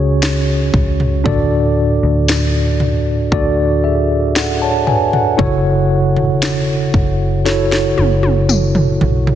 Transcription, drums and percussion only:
0.22 snare loud
0.22 tambourine medium
0.74 kick medium
0.74 floor tom medium
1.00 floor tom medium
1.26 kick loud
1.26 floor tom loud
2.28 snare loud
2.28 tambourine medium
2.80 floor tom medium
3.32 kick loud
4.36 snare loud
4.36 tambourine medium
4.87 floor tom medium
5.13 floor tom medium
5.39 kick loud
5.39 floor tom loud
6.17 floor tom medium
6.42 snare loud
6.42 tambourine medium
6.94 kick medium
6.94 floor tom medium
7.46 snare medium
7.72 snare medium
7.98 high tom medium
8.23 high tom medium
8.49 mid tom medium
8.49 tambourine medium
8.75 mid tom medium
9.01 floor tom loud
9.27 floor tom medium

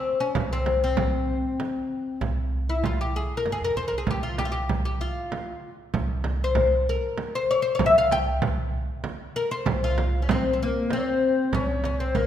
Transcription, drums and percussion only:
0.35 frame drum medium
0.66 frame drum medium
0.97 frame drum medium
1.60 frame drum medium
2.21 frame drum medium
2.84 frame drum medium
3.46 frame drum medium
4.07 frame drum medium
4.38 frame drum medium
4.69 frame drum medium
5.32 frame drum medium
5.94 frame drum medium
6.24 frame drum medium
6.55 frame drum medium
7.18 frame drum medium
7.79 frame drum medium
8.12 frame drum medium
8.42 frame drum medium
9.04 frame drum medium
9.66 frame drum loud
9.98 frame drum medium
10.29 frame drum medium
10.91 frame drum medium
11.53 frame drum medium
11.84 frame drum medium
12.15 frame drum medium

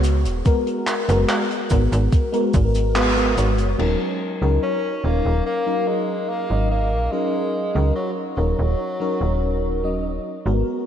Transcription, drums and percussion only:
0.04 closed hi-hat medium
0.04 cabasa medium
0.25 closed hi-hat medium
0.25 cabasa medium
0.45 kick loud
0.45 closed hi-hat medium
0.45 cabasa soft
0.67 closed hi-hat soft
0.87 clap medium
0.87 closed hi-hat medium
0.87 cabasa medium
1.09 closed hi-hat medium
1.09 cabasa soft
1.29 clap loud
1.29 closed hi-hat medium
1.29 cabasa soft
1.51 closed hi-hat soft
1.70 kick medium
1.70 closed hi-hat medium
1.70 cabasa medium
1.93 closed hi-hat medium
1.93 cabasa medium
2.12 kick loud
2.12 closed hi-hat medium
2.12 cabasa soft
2.33 closed hi-hat medium
2.54 kick loud
2.54 closed hi-hat medium
2.54 cabasa medium
2.75 closed hi-hat medium
2.75 cabasa soft
2.96 clap loud
2.96 closed hi-hat medium
2.96 cabasa soft
3.17 closed hi-hat medium
3.38 closed hi-hat medium
3.38 cabasa medium
3.58 closed hi-hat medium
3.58 cabasa medium
3.79 crash medium

